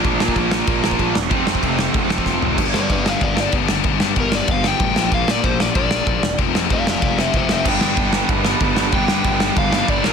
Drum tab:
CC |----------------|----------------|x---------------|----------------|
RD |x---x---x---x---|x---x---x-------|----x---x---x---|x---x---x---x---|
SD |--o---o---o---o-|--o---o---o-o---|--o---o---o---o-|--o---o---o---o-|
FT |----------------|--------------o-|----------------|----------------|
BD |o--oo---o--oo---|o--oo---o--oo---|o---o---o---o---|o---o---o---o---|

CC |----------------|----------------|x---------------|----------------|
RD |x---x---x---x---|x---x---x---x---|----x---x---x---|x---x---x---x---|
SD |--o---o---o---o-|--o---o---o---o-|--o---o---o---o-|--o---o---o---o-|
FT |----------------|----------------|----------------|----------------|
BD |o---o---o---o---|o---o---o---o---|o---o---o---o---|o---o---o---o---|